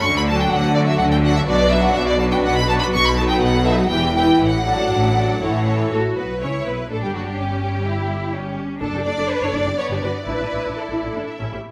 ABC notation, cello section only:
X:1
M:3/4
L:1/8
Q:1/4=124
K:D
V:1 name="Cello section" clef=bass
D,2 D,2 D,2 | B,,2 B,,2 B,,2 | B,,2 B,,2 E,,2 | A,,2 A,,2 A,,2 |
F2 E2 D2 | C2 E2 C2 | D4 B,2 | E4- E z |]